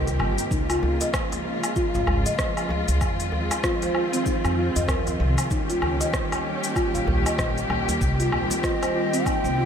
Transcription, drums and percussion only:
0.07 open hi-hat soft
0.07 djembe tone medium
0.07 shaker soft
0.20 low woodblock medium
0.38 open hi-hat medium
0.38 shaker medium
0.51 kick loud
0.51 shaker medium
0.70 open hi-hat soft
0.70 low woodblock medium
0.70 shaker soft
0.83 djembe tone medium
1.01 open hi-hat medium
1.01 djembe slap medium
1.01 shaker medium
1.14 kick loud
1.14 cross-stick loud
1.14 low woodblock medium
1.14 shaker medium
1.32 open hi-hat soft
1.32 djembe slap medium
1.32 shaker soft
1.64 open hi-hat medium
1.64 low woodblock medium
1.64 shaker medium
1.76 kick medium
1.76 shaker medium
1.95 djembe slap medium
1.95 djembe tone soft
1.95 shaker soft
2.07 djembe slap soft
2.07 djembe bass loud
2.07 low woodblock medium
2.26 open hi-hat soft
2.26 djembe tone medium
2.26 shaker medium
2.39 kick loud
2.39 cross-stick medium
2.39 shaker medium
2.57 open hi-hat soft
2.57 low woodblock medium
2.57 shaker soft
2.69 djembe slap soft
2.69 djembe tone medium
2.88 open hi-hat medium
2.88 shaker medium
3.01 kick loud
3.01 low woodblock medium
3.01 shaker medium
3.20 open hi-hat soft
3.20 shaker soft
3.32 djembe tone medium
3.51 open hi-hat medium
3.51 djembe slap medium
3.51 low woodblock medium
3.51 shaker medium
3.64 kick loud
3.64 cross-stick loud
3.64 shaker soft
3.82 open hi-hat soft
3.82 djembe slap medium
3.82 shaker soft
3.95 low woodblock medium
4.13 open hi-hat soft
4.13 shaker medium
4.26 kick medium
4.26 shaker medium
4.45 low woodblock medium
4.45 shaker soft
4.76 open hi-hat soft
4.76 djembe tone medium
4.76 shaker medium
4.88 kick loud
4.88 cross-stick medium
4.88 djembe bass medium
4.88 low woodblock medium
4.88 shaker medium
5.07 open hi-hat soft
5.07 djembe tone medium
5.07 shaker soft
5.38 open hi-hat medium
5.38 low woodblock medium
5.38 shaker medium
5.51 kick loud
5.51 shaker soft
5.70 open hi-hat soft
5.70 shaker soft
5.82 djembe tone medium
5.82 djembe bass medium
5.82 low woodblock medium
6.01 open hi-hat soft
6.01 djembe slap medium
6.01 shaker medium
6.13 kick medium
6.13 cross-stick medium
6.13 shaker medium
6.32 open hi-hat soft
6.32 djembe slap medium
6.32 low woodblock medium
6.32 shaker soft
6.64 open hi-hat soft
6.64 shaker medium
6.76 kick medium
6.76 low woodblock medium
6.76 shaker soft
6.94 open hi-hat soft
6.94 djembe slap soft
6.94 djembe tone soft
6.94 shaker soft
7.08 djembe slap soft
7.08 djembe bass medium
7.26 open hi-hat soft
7.26 djembe tone soft
7.26 low woodblock medium
7.26 shaker medium
7.39 kick loud
7.39 cross-stick medium
7.39 shaker medium
7.58 open hi-hat soft
7.58 shaker soft
7.70 djembe slap soft
7.70 djembe tone medium
7.70 low woodblock medium
7.89 open hi-hat medium
7.89 shaker medium
8.01 kick medium
8.01 shaker medium
8.20 open hi-hat soft
8.20 shaker soft
8.32 djembe tone medium
8.32 low woodblock medium
8.50 open hi-hat soft
8.50 djembe slap medium
8.50 shaker medium
8.63 kick loud
8.63 cross-stick medium
8.63 shaker medium
8.82 open hi-hat soft
8.82 djembe slap medium
8.82 low woodblock medium
8.82 shaker soft
9.13 open hi-hat soft
9.13 shaker medium
9.26 kick medium
9.26 low woodblock medium
9.26 shaker medium
9.45 shaker soft

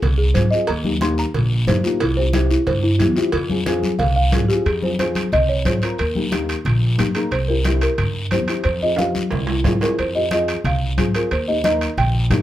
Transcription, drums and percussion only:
0.02 cowbell medium
0.02 high conga soft
0.02 low conga medium
0.02 long guiro medium
0.35 cowbell medium
0.35 high conga medium
0.35 short guiro medium
0.52 short guiro medium
0.67 cowbell loud
0.67 high conga soft
0.67 long guiro medium
0.84 high conga medium
1.01 cowbell medium
1.01 high conga medium
1.01 short guiro medium
1.18 short guiro medium
1.34 cowbell medium
1.34 high conga soft
1.34 low conga medium
1.34 long guiro medium
1.67 cowbell medium
1.67 high conga medium
1.67 low conga medium
1.67 low timbale medium
1.67 short guiro medium
1.84 short guiro medium
2.00 cowbell loud
2.00 high conga soft
2.00 long guiro medium
2.33 cowbell medium
2.33 high conga medium
2.33 short guiro medium
2.50 short guiro medium
2.67 cowbell medium
2.67 high conga soft
2.67 low conga medium
2.67 long guiro medium
3.00 cowbell medium
3.00 high conga medium
3.00 short guiro medium
3.17 short guiro medium
3.32 cowbell loud
3.32 high conga soft
3.32 low conga medium
3.32 long guiro medium
3.50 high conga medium
3.66 cowbell medium
3.66 high conga loud
3.66 short guiro medium
3.83 high conga medium
3.83 short guiro medium
3.99 cowbell medium
3.99 high conga soft
3.99 low conga medium
3.99 long guiro medium
4.32 cowbell medium
4.32 high conga medium
4.32 low timbale medium
4.32 short guiro medium
4.50 short guiro medium
4.66 high conga soft
4.66 high timbale medium
4.66 long guiro medium
4.82 high conga medium
4.99 high conga medium
4.99 high timbale medium
4.99 short guiro medium
5.15 high conga medium
5.15 high timbale medium
5.15 short guiro medium
5.32 high conga soft
5.32 low conga medium
5.32 high timbale medium
5.32 long guiro medium
5.65 high conga medium
5.65 high timbale medium
5.65 short guiro medium
5.82 high timbale medium
5.82 short guiro medium
5.98 high conga soft
5.98 high timbale medium
5.98 long guiro medium
6.15 high conga medium
6.32 high conga medium
6.32 high timbale medium
6.32 short guiro medium
6.49 high timbale medium
6.49 short guiro medium
6.65 high conga soft
6.65 low conga medium
6.65 high timbale medium
6.65 long guiro medium
6.98 high conga medium
6.98 high timbale medium
6.98 short guiro medium
7.15 high timbale medium
7.15 short guiro medium
7.32 high conga soft
7.32 high timbale medium
7.32 long guiro medium
7.64 high conga medium
7.64 high timbale medium
7.64 short guiro medium
7.81 high timbale medium
7.81 short guiro medium
7.98 high conga soft
7.98 low conga medium
7.98 high timbale medium
7.98 long guiro medium
8.31 high conga medium
8.31 high timbale medium
8.31 short guiro medium
8.48 high timbale medium
8.48 short guiro medium
8.64 high conga soft
8.64 high timbale medium
8.64 long guiro medium
8.96 high conga medium
8.96 high timbale medium
8.96 short guiro medium
9.15 high conga medium
9.15 short guiro medium
9.31 high conga soft
9.31 low conga medium
9.31 low timbale medium
9.31 long guiro medium
9.47 low timbale medium
9.64 high conga medium
9.64 low conga medium
9.64 low timbale medium
9.64 short guiro medium
9.81 low timbale loud
9.81 short guiro medium
9.98 high conga soft
9.98 high timbale medium
9.98 long guiro medium
10.31 high conga medium
10.31 high timbale medium
10.31 short guiro medium
10.48 high timbale medium
10.48 short guiro medium
10.64 high conga soft
10.64 low conga medium
10.64 high timbale medium
10.64 long guiro medium
10.98 high conga medium
10.98 high timbale medium
10.98 short guiro medium
11.15 high timbale medium
11.15 short guiro medium
11.31 high conga soft
11.31 high timbale medium
11.31 long guiro medium
11.64 high conga medium
11.64 high timbale medium
11.64 short guiro medium
11.81 high timbale medium
11.81 short guiro medium
11.98 high conga soft
11.98 low conga medium
11.98 high timbale medium
11.98 long guiro medium
12.30 high conga medium
12.30 low conga medium
12.30 high timbale medium
12.30 low timbale medium
12.30 short guiro medium

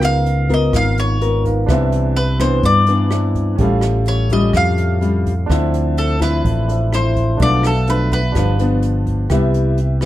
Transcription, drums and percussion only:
0.02 cross-stick medium
0.02 closed hi-hat soft
0.26 closed hi-hat soft
0.50 kick soft
0.50 closed hi-hat soft
0.73 kick medium
0.73 cross-stick medium
0.73 closed hi-hat medium
0.98 closed hi-hat soft
1.21 closed hi-hat soft
1.45 kick soft
1.45 closed hi-hat soft
1.68 kick medium
1.68 cross-stick medium
1.68 closed hi-hat medium
1.92 closed hi-hat soft
2.16 closed hi-hat soft
2.40 kick soft
2.40 cross-stick medium
2.40 closed hi-hat soft
2.63 kick medium
2.63 closed hi-hat medium
2.86 closed hi-hat soft
3.11 cross-stick medium
3.11 closed hi-hat soft
3.35 kick soft
3.35 closed hi-hat soft
3.58 kick medium
3.58 closed hi-hat medium
3.81 cross-stick medium
3.81 closed hi-hat soft
4.06 closed hi-hat soft
4.30 kick soft
4.30 closed hi-hat soft
4.53 kick medium
4.53 cross-stick medium
4.53 closed hi-hat medium
4.78 closed hi-hat soft
5.02 closed hi-hat soft
5.26 kick soft
5.26 closed hi-hat soft
5.50 kick medium
5.50 cross-stick medium
5.50 closed hi-hat medium
5.74 closed hi-hat soft
5.97 closed hi-hat soft
6.21 kick soft
6.21 cross-stick medium
6.21 closed hi-hat soft
6.45 kick medium
6.45 closed hi-hat medium
6.69 closed hi-hat soft
6.93 cross-stick medium
6.93 closed hi-hat soft
7.16 kick soft
7.16 closed hi-hat soft
7.40 kick medium
7.40 closed hi-hat medium
7.63 cross-stick medium
7.63 closed hi-hat soft
7.87 closed hi-hat soft
8.11 kick soft
8.11 closed hi-hat soft
8.35 kick medium
8.35 cross-stick medium
8.35 closed hi-hat medium
8.59 closed hi-hat soft
8.82 closed hi-hat soft
9.07 kick soft
9.07 closed hi-hat soft
9.30 kick medium
9.30 cross-stick medium
9.30 closed hi-hat medium
9.54 closed hi-hat soft
9.77 closed hi-hat soft
10.01 cross-stick medium
10.01 closed hi-hat soft

